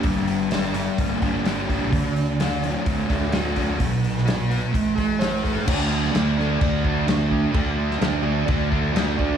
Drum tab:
CC |----------------|----------------|----------------|x---x---x---x---|
HH |o-o-o-o-o-o-o-o-|o-o-o-o-o-o-o-o-|o-o-o-o-o-o-o-o-|----------------|
SD |----o-------o---|----o-------o---|---oo-------o---|---oo-o-----o---|
BD |o-------o-o---o-|o-------o-o---o-|o-------o-o---o-|o-------o-o---o-|

CC |x---x---x---x---|
HH |----------------|
SD |---oo-------o---|
BD |o-------o-o---o-|